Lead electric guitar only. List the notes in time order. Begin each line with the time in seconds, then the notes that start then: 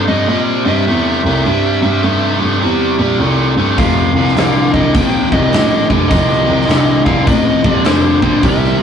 0.08 D#5
0.29 D#5
0.68 E5
3.78 F5
4.73 D#5
4.95 G5
5.33 D#5
6.09 D#5
7.05 F5
7.27 D#5
7.70 D5
7.85 C5
8.43 E5
8.79 C5